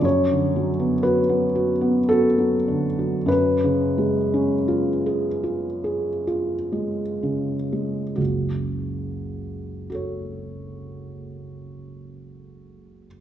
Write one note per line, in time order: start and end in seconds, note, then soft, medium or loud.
0.02 3.24 F#2 soft
0.02 1.03 C#5 medium
0.31 0.69 D3 soft
0.56 0.94 F#3 soft
0.80 1.18 B3 soft
1.03 1.44 F#4 soft
1.03 2.09 B4 medium
1.29 1.70 B3 soft
1.55 1.98 F#4 soft
1.81 2.26 B3 soft
2.09 2.56 F#4 soft
2.09 3.29 A4 medium
2.38 2.85 F#3 soft
2.68 3.17 D3 soft
2.99 3.29 F#3 soft
3.26 8.13 F#2 soft
3.26 6.24 B4 medium
3.64 4.17 C#3 soft
3.98 4.53 G#3 soft
4.34 4.90 C#4 soft
4.68 5.26 F4 soft
5.06 5.67 G#4 soft
5.44 6.08 F4 soft
5.84 6.53 G#4 soft
6.27 7.02 F4 soft
6.72 7.53 G#3 soft
7.23 8.01 C#3 soft
7.73 8.18 G#3 soft
8.16 13.05 F#1 soft
8.16 13.05 C#2 soft
8.16 9.88 F#4 soft
9.90 13.21 F#4 soft
9.90 13.21 A4 soft
9.95 13.21 C#5 soft